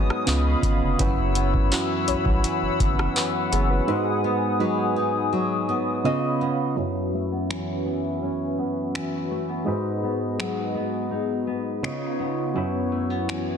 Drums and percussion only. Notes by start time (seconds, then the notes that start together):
0.10 cross-stick
0.27 clap, closed hi-hat
0.63 kick, closed hi-hat
0.99 kick, closed hi-hat
1.35 closed hi-hat
1.54 kick
1.72 clap, closed hi-hat
2.08 closed hi-hat
2.25 kick
2.44 closed hi-hat
2.80 kick, closed hi-hat
2.99 cross-stick
3.16 clap, closed hi-hat
3.53 closed hi-hat
7.51 finger snap
8.95 finger snap
10.40 finger snap
11.84 finger snap
13.29 finger snap